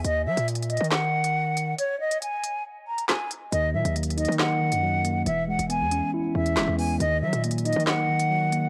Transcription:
<<
  \new Staff \with { instrumentName = "Flute" } { \time 4/4 \key ees \phrygian \tempo 4 = 138 ees''8 fes''8 r8 ees''8 ges''2 | des''8 ees''8 aes''4 r8 bes''8 aes''8 r8 | ees''8 fes''8 r8 ees''8 ges''2 | e''8 ges''8 gis''4 r8 e''4 gis''8 |
ees''8 fes''8 r8 ees''8 ges''2 | }
  \new Staff \with { instrumentName = "Tine electric piano" } { \time 4/4 \key ees \phrygian r1 | r1 | ees8 ges8 bes8 ees'8 ees''8 ees8 ges8 bes8 | e8 gis8 b8 cis'8 e'8 e8 gis8 b8 |
ees8 ges8 bes8 ees'8 ees''8 ees8 ges8 bes8 | }
  \new Staff \with { instrumentName = "808-style bass" } { \clef bass \time 4/4 \key ees \phrygian ees,8 ges16 bes,4 ees2~ ees16 | r1 | ees,8 bes,16 ees,4 ees4 ges,4~ ges,16 | e,,8. e,,8 e,8 r8. e,8 ges,,16 e,8. |
ees,8 ges16 bes,4 ees2~ ees16 | }
  \new DrumStaff \with { instrumentName = "Drums" } \drummode { \time 4/4 hh8. hh16 \tuplet 3/2 { hh16 hh16 hh16 hh16 hh16 hh16 } <hc sn>8. hh16 r8 hh8 | hh8. hh16 hh8 hh8 r8. hh16 <hc hh sn>8 hh8 | hh8. hh16 \tuplet 3/2 { hh16 hh16 hh16 hh16 hh16 hh16 } <hc sn>8. hh16 r8 hh8 | hh8. hh16 hh8 hh8 r8. hh16 <hc hh sn>8 hho8 |
hh8. hh16 \tuplet 3/2 { hh16 hh16 hh16 hh16 hh16 hh16 } <hc sn>8. hh16 r8 hh8 | }
>>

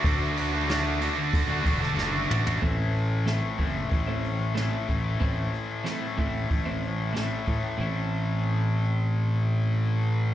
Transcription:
<<
  \new Staff \with { instrumentName = "Distorted electric guitar" } { \time 4/4 \key a \dorian \tempo 4 = 93 <d a d' fis'>8 <d a d' fis'>16 <a d' fis'>16 <d a d' fis'>16 <a d' fis'>16 <d a d' fis'>8. <a d' fis'>16 <d a d' fis'>16 <a d' fis'>16 <d a d' fis'>8 <d a d' fis'>16 <a d' fis'>16 | r1 | r1 | r1 | }
  \new Staff \with { instrumentName = "Clean electric guitar" } { \time 4/4 \key a \dorian r1 | <e a c' e'>16 r8. <e a c' e'>16 r16 <e a c' e'>16 r8 <e a c' e'>16 r8 <e a c' e'>16 r8. | <e a c' e'>16 r8. <e a c' e'>16 r16 <e a c' e'>16 r8 <e a c' e'>16 r8 <e a c' e'>16 r8. | <a, e a c' e'>1 | }
  \new Staff \with { instrumentName = "Distorted electric guitar" } { \time 4/4 \key a \dorian <d a d' fis'>8. <a d' fis'>16 <d a d' fis'>8 <d a d' fis'>8. <a d' fis'>16 <d a d' fis'>8 <d a d' fis'>16 <a d' fis'>8 <a d' fis'>16 | <a, e a>4 <a, e a>8 <a, e a>8 <a, e a>4 <a, e a>8 <a, e a>8 | <a, e a>4 <a, e a>8 <a, e a>8 <a, e a>4 <a, e a>8 <a, e a>8 | <a, e a>1 | }
  \new Staff \with { instrumentName = "Fingered electric bass" } { \clef bass \time 4/4 \key a \dorian d,2 d8 e,,8 fis,,8 a,,8 | a,,4. fis,,8 a,,4. a,,8 | a,,8 r4 a,,8 a,,4. a,16 r16 | a,,1 | }
  \new DrumStaff \with { instrumentName = "Drums" } \drummode { \time 4/4 <cymc bd>8 cymc8 <cymc sn>8 cymc8 <cymc bd>8 <cymc bd>16 sn16 sn8 toml16 tomfh16 | <hho bd>8 hho8 <hho sn>8 <hho bd>8 <hho bd>8 hho8 <hho sn>8 <hho bd>8 | <hho bd>8 hho8 <hho sn>8 <hho bd>8 <hho bd>8 hho8 <hho sn>8 <hho bd>8 | r4 r4 r4 r4 | }
>>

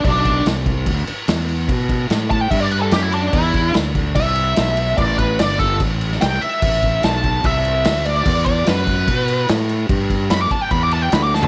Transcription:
<<
  \new Staff \with { instrumentName = "Lead electric guitar" } { \time 4/4 \key e \minor \tempo 4 = 146 d'4 r2. | r4. a''16 g''16 e''16 d''16 b'16 a'16 g'16 e'16 d'8 | e'4 r4 e''2 | d''8 b'8 d''8 a'8 r4 g''8 e''8~ |
e''4 a''4 e''4. d''8~ | d''8 d''8 b'2 r4 | r4 b''16 d'''16 a''16 g''16 b''16 d'''16 a''16 g''16 b''16 d'''16 a''16 a''16 | }
  \new Staff \with { instrumentName = "Fingered electric bass" } { \clef bass \time 4/4 \key e \minor b,,4 c,4 d,8 r8 e,4 | b,4 a,4 g,4 fis,4 | e,4 d,4 c,4 b,,4 | a,,4 g,,4 a,,4 c,8 r8 |
a,,4 b,,4 c,4 d,4 | e,4 fis,4 b,4 a,4 | g,4 fis,8 r8 e,4 d,4 | }
  \new DrumStaff \with { instrumentName = "Drums" } \drummode { \time 4/4 <cymc bd>8 <cymc bd>8 <cymc sn>8 <cymc bd>8 <cymc bd>8 cymc8 <cymc sn>8 cymc8 | <cymc bd>8 <cymc bd>8 <cymc sn>8 <cymc bd>8 <cymc bd>8 cymc8 <cymc sn>8 cymc8 | <cymc bd>8 <cymc bd>8 <cymc sn>8 <cymc bd>8 <cymc bd>8 cymc8 <cymc sn>8 cymc8 | <cymc bd>8 <cymc bd>8 <cymc sn>8 <cymc bd>8 <cymc bd>8 cymc16 sn16 <cymc sn>8 cymc8 |
<cymc bd>8 <cymc bd>8 <cymc sn>8 <cymc bd>8 <cymc bd>8 cymc8 <cymc sn>8 cymc8 | <cymc bd>8 <cymc bd>8 <cymc sn>8 <cymc bd>8 <cymc bd>8 cymc8 <cymc sn>8 cymc8 | <cymc bd>8 <cymc bd>8 <cymc sn>8 <cymc bd>8 <cymc bd>8 cymc8 <cymc sn>8 sn16 tomfh16 | }
>>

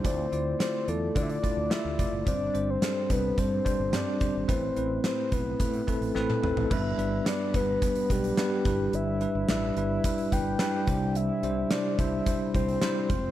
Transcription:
<<
  \new Staff \with { instrumentName = "Soft synth lead" } { \time 4/4 \key c \major \tempo 4 = 108 c''4 c''8 a'8 d''32 e''32 d''8. e''8. r16 | d''8. c''8. b'8 c''4 d''8. r16 | c''4 c''8 b'4 a'4. | e''4 d''8 b'4 g'4. |
e''4 e''8 e''4 g''4. | e''4 d''8 e''4 c''4. | }
  \new Staff \with { instrumentName = "Tine electric piano" } { \time 4/4 \key c \major <a e' f' d''>8 <a e' f' d''>8 <a e' f' d''>8 <a e' f' d''>8 <a e' f' d''>8 <a e' f' d''>8 <a e' f' d''>8 <a e' f' d''>8 | <g c' d' c''>8 <g c' d' c''>8 <g c' d' a'>8 <g c' d' c''>8 <g c' d' c''>8 <g c' d' c''>8 <g c' d' c''>8 <g c' d' c''>8 | <a c' e' b'>8 <a c' e' b'>8 <a c' e' b'>8 <a c' e' b'>8 <a c' e' b'>8 <a c' e' b'>8 <a c' e' b'>8 <a c' e' b'>8 | <g b d' b'>8 <g b d' b'>8 <g b d' b'>8 <g b d' b'>8 <g b d' b'>8 <g b d' b'>8 <g b d' b'>8 <g d' e' b'>8~ |
<g d' e' b'>8 <g d' e' b'>8 <g d' e' b'>8 <g d' e' b'>8 <g d' e' b'>8 <g d' e' b'>8 <g d' e' b'>8 <g d' e' c''>8~ | <g d' e' c''>8 <g d' e' c''>8 <g d' e' c''>8 <g d' e' c''>8 <g d' e' c''>8 <g d' e' c''>8 <g d' e' c''>8 <aes c' f' c''>8 | }
  \new Staff \with { instrumentName = "Tine electric piano" } { \clef bass \time 4/4 \key c \major d4. r2 r8 | g,4. r2 r8 | a,4. r2 r8 | g,4. r2 g,8~ |
g,4 r2 r8 c8~ | c4 r2. | }
  \new Staff \with { instrumentName = "Fretless electric bass" } { \clef bass \time 4/4 \key c \major d,8 d,8 r8 e,8 d8 r16 d,16 r16 d,16 f,,16 fis,,16 | g,,8 g,,8 r8 c,8 g,8 r16 g,,16 g,16 r16 g,,16 aes,,16 | a,,8 a,,8 r8 b,,8 a,8 r16 a,,16 a,,16 r16 a,,16 a,,16 | g,,8 g,,8 r8 g,,8 r8 b,,8 r8 g,,8 |
g,,8. g,,16 a,,8 g,,8 r8 g,,8 r8 c,8~ | c,8 c,8 r8 c,8 r8 c,8 r8 f,,8 | }
  \new DrumStaff \with { instrumentName = "Drums" } \drummode { \time 4/4 <hh bd>8 hh8 <hh sn>8 hh8 <hh bd>16 hh16 <hh bd>8 <hh sn>8 <hh bd>8 | <hh bd>8 hh8 <hh sn>8 <hh bd>8 <hh bd>8 <hh bd>8 <hh sn>8 <hh bd>8 | <hh bd>8 hh8 <hh sn>8 <hh bd>8 <hh bd>16 hh16 <hh bd>16 hh16 sn16 tommh16 toml16 tomfh16 | <cymc bd>8 hh8 <hh sn>8 <hh bd>8 <hh bd>16 hh16 <hh bd>16 hh16 <hh sn>8 <hh bd>8 |
hh8 hh8 <hh sn>8 hh8 <hh bd>16 hh16 <hh bd>8 <hh sn>8 <hh bd>8 | hh8 hh8 <hh sn>8 <hh bd>8 <hh bd>8 <hh bd>16 hh16 <hh sn>8 <hh bd>8 | }
>>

